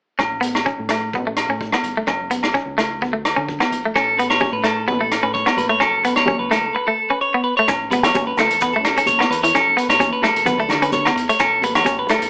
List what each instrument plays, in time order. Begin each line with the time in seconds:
0.19 fingered electric bass A1, clean electric guitar C#4, kick, cross-stick, low agogo
0.41 clean electric guitar B3, closed hi-hat
0.55 cross-stick, low agogo
0.66 clean electric guitar C#4, kick
0.79 fingered electric bass A2
0.89 clean electric guitar A3, cross-stick, closed hi-hat, low agogo
1.13 fingered electric bass A1, clean electric guitar B3, kick
1.27 clean electric guitar A3
1.37 cross-stick, closed hi-hat, low agogo
1.49 fingered electric bass A2, clean electric guitar C#4
1.61 kick
1.72 clean electric guitar B3, cross-stick, low agogo
1.83 fingered electric bass G1, closed hi-hat
1.97 clean electric guitar A3
2.07 fingered electric bass F#1, clean electric guitar C#4, kick, cross-stick, low agogo
2.31 clean electric guitar B3, closed hi-hat
2.43 cross-stick, low agogo
2.54 clean electric guitar C#4, kick
2.65 fingered electric bass C#2
2.78 clean electric guitar A3, cross-stick, closed hi-hat, low agogo
3.02 fingered electric bass D2, clean electric guitar B3, kick
3.13 clean electric guitar A3
3.25 cross-stick, closed hi-hat, low agogo
3.36 fingered electric bass D3, clean electric guitar C#4
3.48 kick
3.60 clean electric guitar B3, cross-stick, low agogo
3.71 fingered electric bass A#1, closed hi-hat
3.85 clean electric guitar A3
3.95 fingered electric bass A1, clean electric guitar C#4 A4, kick, cross-stick, muted conga, low agogo
4.19 clean electric guitar B3 B4, closed hi-hat
4.30 clean electric guitar C#5, cross-stick, low agogo
4.41 clean electric guitar C#4, kick, high conga
4.52 fingered electric bass A2, clean electric guitar B4
4.64 clean electric guitar A3 A4, cross-stick, closed hi-hat, low agogo
4.88 fingered electric bass A1, clean electric guitar B3 B4, kick, muted conga, high conga
5.00 clean electric guitar A3 A4
5.11 cross-stick, closed hi-hat, muted conga, low agogo
5.23 fingered electric bass A2, clean electric guitar C#4 B4
5.34 clean electric guitar C#5, kick
5.46 clean electric guitar B3, cross-stick, low agogo
5.57 fingered electric bass A1, clean electric guitar B4, closed hi-hat, muted conga, high conga
5.69 clean electric guitar A3 C#5
5.80 fingered electric bass F#1, clean electric guitar C#4 A4, kick, cross-stick, muted conga, low agogo
6.05 clean electric guitar B3 B4, closed hi-hat
6.16 clean electric guitar C#5, cross-stick, low agogo
6.26 clean electric guitar C#4, kick, high conga, low conga
6.39 fingered electric bass C#2, clean electric guitar B4
6.51 clean electric guitar A3 A4, cross-stick, closed hi-hat, low agogo
6.75 clean electric guitar B4, muted clean electric guitar stroke
6.87 clean electric guitar A3 A4
7.10 clean electric guitar C#4 B4
7.21 clean electric guitar C#5
7.34 clean electric guitar B3
7.44 clean electric guitar B4
7.57 clean electric guitar A3 C#5
7.68 fingered electric bass A1, clean electric guitar C#4, muted clean electric guitar stroke, kick, cross-stick, closed hi-hat, muted conga, low agogo, maracas
7.91 clean electric guitar B3 B4, closed hi-hat, high conga, maracas
8.03 fingered electric bass E2, clean electric guitar C#5, cross-stick, closed hi-hat, low agogo
8.15 fingered electric bass A1, clean electric guitar C#4, kick, closed hi-hat, high conga, maracas
8.27 clean electric guitar B4
8.37 fingered electric bass C#2, clean electric guitar A3 A4, cross-stick, closed hi-hat, muted conga, low agogo, maracas
8.50 fingered electric bass E2, closed hi-hat
8.61 clean electric guitar B3 B4, kick, closed hi-hat, muted conga, maracas
8.72 fingered electric bass F#1, clean electric guitar A3 A4, maracas
8.83 cross-stick, closed hi-hat, muted conga, low agogo, maracas
8.96 clean electric guitar C#4 A4, closed hi-hat, maracas
9.06 clean electric guitar C#5, kick, closed hi-hat, high conga, maracas
9.19 clean electric guitar B3, cross-stick, low agogo, maracas
9.30 fingered electric bass E2, clean electric guitar B4, closed hi-hat, maracas
9.43 clean electric guitar E3 C#5, closed hi-hat
9.53 fingered electric bass F#1, clean electric guitar C#4 A4, kick, cross-stick, closed hi-hat, muted conga, low agogo, maracas
9.77 clean electric guitar B3 B4, closed hi-hat, maracas
9.88 fingered electric bass A1, clean electric guitar C#5, cross-stick, closed hi-hat, low agogo
9.99 fingered electric bass E2, clean electric guitar C#4, kick, closed hi-hat, high conga, maracas
10.13 clean electric guitar B4
10.22 fingered electric bass F#1, clean electric guitar A3 A4, cross-stick, closed hi-hat, muted conga, low agogo, maracas
10.35 fingered electric bass E1, closed hi-hat
10.46 fingered electric bass D2, clean electric guitar B3 B4, kick, closed hi-hat, muted conga, high conga, low conga, maracas
10.57 fingered electric bass D2, clean electric guitar A3 A4, maracas
10.69 fingered electric bass D3, cross-stick, closed hi-hat, muted conga, low conga, low agogo, maracas
10.82 clean electric guitar C#4 B4, closed hi-hat, maracas
10.92 clean electric guitar C#5, kick, closed hi-hat, high conga, maracas
11.05 clean electric guitar B3, cross-stick, low agogo, maracas
11.16 fingered electric bass E2, muted clean electric guitar stroke, closed hi-hat
11.29 clean electric guitar A3 C#5, closed hi-hat
11.39 fingered electric bass A1, clean electric guitar C#4 A4, kick, cross-stick, closed hi-hat, muted conga, low agogo, maracas
11.62 clean electric guitar B4, muted clean electric guitar stroke, closed hi-hat, high conga
11.75 fingered electric bass E2, clean electric guitar C#5, cross-stick, closed hi-hat, low agogo
11.85 fingered electric bass A1, clean electric guitar C#4, kick, closed hi-hat, high conga, maracas
11.99 clean electric guitar B4
12.09 fingered electric bass C#2, clean electric guitar A3 A4, cross-stick, closed hi-hat, muted conga, low agogo, maracas
12.22 fingered electric bass E2, closed hi-hat